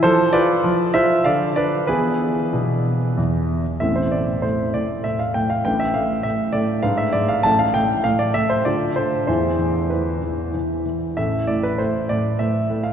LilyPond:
<<
  \new Staff \with { instrumentName = "Grand piano" } { \time 3/4 \key a \minor \tempo 4 = 97 << { <a' c''>8 <b' d''>4 <c'' e''>8 <d'' f''>8 <b' d''>8 | <gis' b'>2 r4 | e''16 c''16 d''8 c''8 d''8 e''16 f''16 g''16 f''16 | g''16 e''16 f''8 e''8 d''8 f''16 e''16 d''16 f''16 |
a''16 f''16 g''8 f''16 d''16 e''16 c''16 d''8 c''8 | c''4 b'4. r8 | e''8 d''16 b'16 c''8 d''8 e''8. f''16 | } \\ { r2. | r2. | <c' e'>2. | <d' b'>2 <d' b'>4 |
<e' a'>2 <f' a'>4 | <e' gis'>2. | <e' a'>2. | } >> }
  \new Staff \with { instrumentName = "Grand piano" } { \clef bass \time 3/4 \key a \minor f8 f'8 f8 f'8 d8 d'8 | <e b e'>4 b,4 e,4 | <a,, a,>8 a,8 a,8 a,8 a,8 a,8 | <a,, a,>8 a,8 a,8 a,8 gis,8 gis,8 |
<a,, a,>8 a,8 a,8 a,8 d8 d8 | <e, e>8 e8 e8 e8 e8 e8 | <a,, a,>8 a,8 a,8 a,8 a,8 a,8 | }
>>